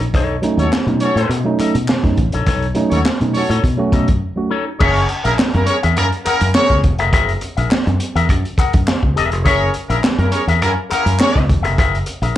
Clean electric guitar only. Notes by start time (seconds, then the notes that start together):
0.02 muted clean electric guitar stroke
0.15 D#4 A4 C#5
0.43 muted clean electric guitar stroke
0.58 D#4 A4 C#5
0.73 muted clean electric guitar stroke
0.89 muted clean electric guitar stroke
1.16 D#4 A4 C#5
1.30 muted clean electric guitar stroke
1.59 D#4 A4 D#5
1.75 muted clean electric guitar stroke
1.88 muted clean electric guitar stroke
2.05 muted clean electric guitar stroke
2.33 D#4 A4 C#5
2.46 D#4 A4 C#5
2.76 muted clean electric guitar stroke
2.92 D#4 A4 C#5
3.06 muted clean electric guitar stroke
3.20 muted clean electric guitar stroke
3.49 D#4 A4 C#5
3.63 muted clean electric guitar stroke
3.92 D#4 A4 D#5
4.08 muted clean electric guitar stroke
4.37 muted clean electric guitar stroke
4.50 D#4 A4 C#5
4.66 muted clean electric guitar stroke
4.79 G#4 A#4 E5
5.09 muted clean electric guitar stroke
5.24 G#4 A#4 E5
5.38 muted clean electric guitar stroke
5.54 muted clean electric guitar stroke
5.83 G#4 A#4 E5
5.97 muted clean electric guitar stroke
6.25 G#4 A#4 F#5
6.41 muted clean electric guitar stroke
6.55 muted clean electric guitar stroke
6.71 muted clean electric guitar stroke
6.99 G#4 A#4 E5
7.13 G#4 A#4 E5
7.42 muted clean electric guitar stroke
7.57 G#4 A#4 E5
7.71 muted clean electric guitar stroke
7.86 muted clean electric guitar stroke
8.15 G#4 A#4 E5
8.29 muted clean electric guitar stroke
8.58 G#4 A#4 F#5
8.74 muted clean electric guitar stroke
9.03 muted clean electric guitar stroke
9.16 G#4 A#4 E5
9.31 muted clean electric guitar stroke
9.45 G#4 A#4 E5
9.74 muted clean electric guitar stroke
9.89 G#4 A#4 E5
10.03 muted clean electric guitar stroke
10.19 muted clean electric guitar stroke
10.48 G#4 A#4 E5
10.61 muted clean electric guitar stroke
10.90 G#4 A#4 F#5
11.05 muted clean electric guitar stroke
11.20 muted clean electric guitar stroke
11.35 muted clean electric guitar stroke
11.62 G#4 A#4 E5
11.78 G#4 A#4 E5
12.06 muted clean electric guitar stroke
12.22 G#4 A#4 E5